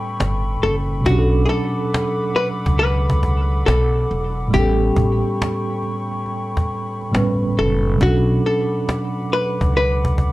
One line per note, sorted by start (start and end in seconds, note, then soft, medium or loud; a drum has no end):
0.00 0.99 A2 medium
0.00 1.01 G3 medium
0.00 1.02 B3 medium
0.00 1.03 C#4 medium
0.00 1.05 A4 medium
0.00 10.32 A4 medium
0.00 1.02 G5 medium
0.00 1.02 B5 medium
0.00 1.02 C#6 medium
0.20 0.57 G1 medium
0.20 cajon slap loud
0.63 1.00 F#1 medium
0.63 0.75 A4 medium
0.63 cajon slap soft
1.01 4.47 B2 medium
1.01 4.49 F#3 medium
1.06 1.43 B1 loud
1.06 4.50 C#4 medium
1.06 4.51 D4 medium
1.06 1.42 F#4 loud
1.06 4.50 F#5 medium
1.06 4.50 B5 medium
1.06 4.50 D6 medium
1.06 cajon bass loud
1.12 1.17 G4 medium
1.18 4.56 A4 medium
1.46 1.49 G#4 medium
1.46 2.32 A4 loud
1.52 cajon slap soft
1.94 cajon slap loud
2.35 2.48 B4 loud
2.35 cajon slap soft
2.66 3.64 C#2 loud
2.66 cajon bass medium
2.79 3.62 B4 loud
3.10 cajon bass medium
3.23 cajon bass medium
3.66 4.05 B1 medium
3.66 4.53 A4 loud
3.66 cajon slap loud
4.11 4.48 E1 medium
4.11 cajon slap soft
4.48 7.08 A2 medium
4.48 7.09 G3 medium
4.53 4.91 A1 loud
4.53 7.10 B3 medium
4.53 7.12 C#4 medium
4.53 6.24 G4 loud
4.53 7.98 G5 medium
4.53 10.32 B5 medium
4.53 7.98 C#6 medium
4.53 cajon bass loud
4.59 7.13 A4 medium
4.96 5.21 A1 loud
4.96 cajon bass loud
5.42 cajon slap loud
5.83 cajon slap soft
6.12 cajon slap soft
6.26 cajon slap soft
6.57 cajon bass loud
6.57 cajon slap soft
6.71 cajon slap soft
7.02 cajon slap soft
7.11 7.52 G1 medium
7.11 8.00 A2 medium
7.11 8.01 G3 medium
7.11 8.01 B3 medium
7.11 cajon slap loud
7.15 7.99 C#4 medium
7.15 8.03 B4 medium
7.59 7.96 F#1 medium
7.59 7.99 A4 medium
7.95 10.32 B2 medium
7.95 10.32 F#3 medium
8.01 8.39 B1 loud
8.01 10.32 C#4 medium
8.01 10.32 D4 medium
8.01 8.46 F#4 loud
8.01 10.32 F#5 medium
8.01 10.32 D6 medium
8.01 cajon bass loud
8.06 10.32 A4 medium
8.46 9.35 A4 medium
8.46 cajon slap soft
8.89 cajon slap loud
9.30 9.73 B4 loud
9.30 cajon slap soft
9.61 10.32 C#2 medium
9.61 cajon bass loud
9.74 10.32 B4 loud
9.74 cajon slap soft
10.05 cajon bass medium
10.18 cajon bass medium